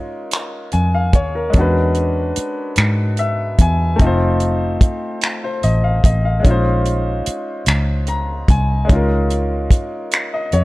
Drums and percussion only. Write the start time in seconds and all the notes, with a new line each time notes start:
0.31 finger snap, closed hi-hat
0.72 closed hi-hat
1.13 kick, closed hi-hat
1.53 kick, closed hi-hat
1.95 closed hi-hat
2.36 closed hi-hat
2.76 finger snap, closed hi-hat
3.17 closed hi-hat
3.59 kick, closed hi-hat
3.99 kick, closed hi-hat
4.40 closed hi-hat
4.81 kick, closed hi-hat
5.21 finger snap, closed hi-hat
5.63 closed hi-hat
6.04 kick, closed hi-hat
6.45 kick, closed hi-hat
6.86 closed hi-hat
7.26 closed hi-hat
7.66 finger snap, closed hi-hat
8.07 closed hi-hat
8.48 kick, closed hi-hat
8.89 kick, closed hi-hat
9.30 closed hi-hat
9.71 kick, closed hi-hat
10.12 finger snap, closed hi-hat
10.52 closed hi-hat